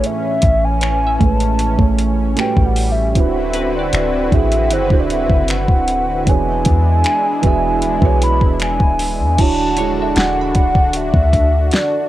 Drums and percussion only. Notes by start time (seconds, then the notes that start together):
0.04 closed hi-hat
0.42 kick, closed hi-hat
0.81 finger snap, closed hi-hat
1.21 kick, closed hi-hat
1.40 closed hi-hat
1.59 closed hi-hat
1.79 kick
1.99 closed hi-hat
2.37 finger snap, closed hi-hat
2.57 kick
2.76 open hi-hat
3.15 kick, closed hi-hat
3.54 closed hi-hat
3.93 finger snap, closed hi-hat
4.32 kick, closed hi-hat
4.52 closed hi-hat
4.71 closed hi-hat
4.90 kick
5.10 closed hi-hat
5.30 kick
5.48 finger snap, closed hi-hat
5.68 kick
5.88 closed hi-hat
6.27 kick, closed hi-hat
6.65 kick, closed hi-hat
7.04 finger snap, closed hi-hat
7.43 kick, closed hi-hat
7.82 closed hi-hat
8.02 kick
8.22 closed hi-hat
8.41 kick
8.60 finger snap, closed hi-hat
8.80 kick
8.99 open hi-hat
9.38 kick, closed hi-hat, crash
9.77 closed hi-hat
10.16 snare, closed hi-hat
10.55 kick, closed hi-hat
10.75 kick
10.93 closed hi-hat
11.14 kick
11.33 kick, closed hi-hat
11.71 snare, closed hi-hat